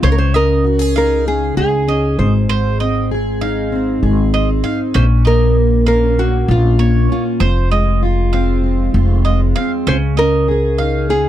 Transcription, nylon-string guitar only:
0.04 0.11 C5 medium
0.12 0.18 A#4 medium
0.18 0.35 C5 medium
0.36 0.96 A#4 loud
0.98 1.27 A#4 medium
1.28 1.56 G#4 medium
1.57 2.18 G#4 medium
2.19 3.38 C5 medium
4.95 5.04 C5 medium
5.27 5.87 A#4 loud
5.88 6.19 A#4 medium
6.19 6.50 F#4 medium
6.51 7.11 F4 medium
7.12 8.30 F4 medium
9.88 9.96 C5 medium
10.19 11.10 A#4 medium
11.10 11.29 G#4 medium

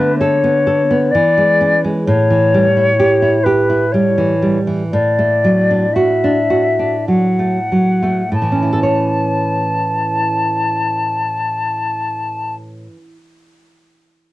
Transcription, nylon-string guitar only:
0.00 1.10 D3 soft
0.00 0.35 A3 soft
0.00 0.11 B3 soft
0.21 0.58 A4 soft
0.44 0.81 B3 soft
0.67 1.04 A4 soft
0.91 1.14 B3 soft
1.15 2.04 E3 soft
1.38 1.74 G#3 soft
1.61 1.97 C#4 soft
1.84 2.07 G#3 soft
2.07 4.88 A2 soft
2.30 2.66 E3 soft
2.54 2.90 G3 soft
2.77 3.13 E4 soft
3.00 3.37 G4 soft
3.22 3.60 E4 soft
3.46 3.84 G4 soft
3.69 4.08 E4 soft
3.94 4.33 G3 soft
4.18 4.57 E3 soft
4.42 4.82 G3 soft
4.67 4.92 E3 soft
4.93 8.29 A2 soft
5.19 5.59 A3 soft
5.44 5.85 F#3 soft
5.71 6.12 D4 soft
5.96 6.38 F#4 soft
6.24 6.67 D4 soft
6.50 6.95 F#4 soft
6.79 7.25 D4 soft
7.08 7.57 F#3 soft
7.39 7.90 A3 soft
7.72 8.22 F#3 soft
8.03 8.32 A3 soft
8.32 12.86 A2 soft
8.42 12.96 E3 soft
8.52 13.06 C#4 soft
8.63 13.17 E4 soft
8.73 8.83 A4 soft
8.83 13.37 C#5 soft

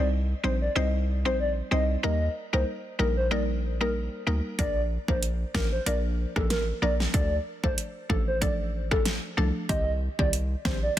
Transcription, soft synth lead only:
0.44 0.56 C5 medium
0.62 0.71 D5 medium
1.26 1.35 C5 medium
1.40 1.52 D5 medium
1.72 1.84 D#5 medium
2.04 2.25 D#5 medium
2.53 2.63 C5 medium
2.99 3.11 A#4 medium
3.17 3.27 C5 medium
3.31 3.43 D5 medium
3.81 3.90 A#4 medium
4.59 4.80 D5 medium
5.09 5.18 C5 medium
5.54 5.67 A#4 medium
5.72 5.82 C5 medium
5.86 5.99 D5 medium
6.36 6.46 A4 medium
6.50 6.62 A#4 medium
6.82 6.94 D5 medium
7.14 7.36 D5 medium
7.64 7.73 C5 medium
8.10 8.22 A4 medium
8.28 8.37 C5 medium
8.42 8.54 D5 medium
8.91 9.01 A4 medium
9.69 9.91 D#5 loud
10.19 10.29 D5 medium
10.65 10.77 C5 medium
10.83 10.93 D5 medium

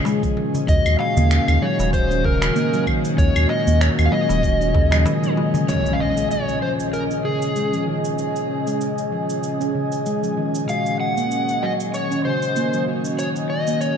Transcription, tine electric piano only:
0.00 0.66 A#2 medium
0.00 0.67 D#3 medium
0.00 0.68 G#3 medium
0.00 0.69 C#4 medium
0.00 0.70 F4 loud
0.66 1.58 A#2 medium
0.66 1.58 D#3 medium
0.66 1.59 G#3 medium
0.66 1.59 C#4 medium
0.66 1.60 F#4 loud
1.60 3.14 A#2 medium
1.60 3.14 D#3 medium
1.60 3.15 G#3 medium
1.60 3.15 C#4 medium
1.60 3.16 F#4 medium
3.17 4.08 A#2 medium
3.17 4.08 D#3 medium
3.17 4.09 G#3 medium
3.17 4.10 C#4 medium
3.17 4.10 F#4 loud
4.11 4.71 A#2 medium
4.11 4.71 D#3 medium
4.11 4.72 G#3 medium
4.11 4.72 C#4 medium
4.11 4.72 F#4 loud
4.74 5.33 A#2 medium
4.74 5.34 D#3 medium
4.74 5.34 G#3 medium
4.74 5.34 C#4 medium
4.74 5.34 G#4 loud
5.36 5.65 A#2 loud
5.36 5.65 D#3 medium
5.36 5.65 G#3 medium
5.36 5.66 C#4 medium
5.36 5.66 G#4 loud
5.67 10.64 A#2 medium
5.67 10.65 D#3 medium
5.67 10.65 G#3 medium
5.67 10.66 C#4 medium
5.71 10.66 F4 medium
10.66 13.97 A#2 medium
10.66 13.97 D#3 medium
10.66 13.97 G#3 medium
10.66 13.97 C#4 medium
10.70 13.97 F#4 medium

